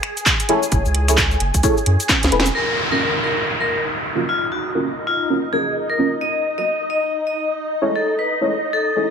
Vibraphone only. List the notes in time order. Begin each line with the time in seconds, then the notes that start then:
2.55 A#4
2.92 A#4
3.24 A#4
3.60 A#4
4.29 F4
4.52 F#4
5.07 F4
5.53 G#4
5.90 A#4
6.21 D#5
6.58 D#5
6.90 D#5
7.27 D#5
7.96 A4
8.19 B4
8.73 A4